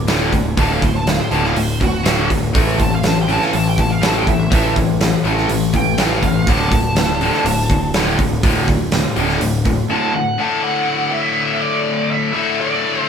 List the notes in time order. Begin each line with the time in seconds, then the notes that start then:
Already playing: D1 D6
0.07 D2 A2 D3, snare, open hi-hat
0.32 D2 A2, kick, open hi-hat
0.44 D1
0.57 D1 D2 A2 D3 A5, kick, open hi-hat
0.72 F5
0.82 D2 A2 C5, kick, open hi-hat
0.96 A5
1.07 D2 A2 F5, snare, open hi-hat
1.20 C5
1.31 D1 D2 A2 D3 A5, open hi-hat
1.44 F5, snare
1.55 D1 D2 A2, open hi-hat
1.59 C5
1.80 D2 A2 F#4, kick, open hi-hat
2.03 D2 A2 D3, snare, open hi-hat
2.29 D2 A2, kick, open hi-hat
2.43 D1
2.53 A1 A2 E3 A3, kick, open hi-hat
2.78 A2 E3 A5, kick, open hi-hat
2.95 F5
3.03 A2 E3 A5, snare, open hi-hat
3.22 G5
3.28 A2 E3 A3 A5, open hi-hat
3.41 F5, snare
3.53 A1 A2 E3 A5, open hi-hat
3.69 G5
3.78 A2 E3 A5, kick, open hi-hat
3.91 F5
4.01 A2 E3 A3, snare, open hi-hat
4.06 A5
4.18 G5
4.26 A2 E3 E5, kick, open hi-hat
4.38 A1
4.50 A1 A2 E3 A3, kick, open hi-hat
4.75 A2 E3, kick, open hi-hat
5.00 A2 E3, snare, open hi-hat
5.24 A1 A2 E3 A3, open hi-hat
5.38 snare
5.49 A1 A2 E3, open hi-hat
5.73 A2 E3 G5, kick, open hi-hat
5.98 A2 E3 A3, snare, open hi-hat
6.02 F5
6.22 A2 E3 F5, kick, open hi-hat
6.34 A1
6.47 D1 D2 A2 D3 A5, kick, open hi-hat
6.71 D2 A2, kick, open hi-hat
6.95 D2 A2, snare, open hi-hat
7.21 D2 A2 D3, open hi-hat
7.34 snare
7.45 D1 D2 A2, open hi-hat
7.70 D2 A2, kick, open hi-hat
7.94 D2 A2 D3, snare, open hi-hat
8.19 D2 A2, kick, open hi-hat
8.31 D1
8.43 D1 D2 A2 D3, kick, open hi-hat
8.68 D2 A2, kick, open hi-hat
8.92 D2 A2, snare, open hi-hat
9.16 D1 D2 A2 D3, open hi-hat
9.29 snare
9.40 D1 D2 A2, open hi-hat
9.65 D2 A2, kick, open hi-hat
9.90 D2 A2 D3 A5
10.15 D2 A2 F#5
10.38 D2 A2 D3 A3 E4 A5
10.64 F#5
11.11 E5
11.61 D5
12.11 E5
12.32 D2 A2 D3 A3 E4 E5
12.60 D5
13.06 C5